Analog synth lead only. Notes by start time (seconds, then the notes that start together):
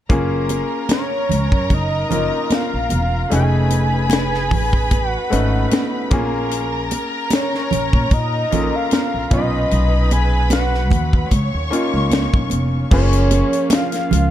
0.93 C#5
1.74 D#5
2.54 F5
3.36 G#5
5.11 F#5
7.35 C#5
8.14 D#5
8.76 F5
9.33 D#5
10.12 G#5
10.53 F#5
12.93 C#5
13.74 F5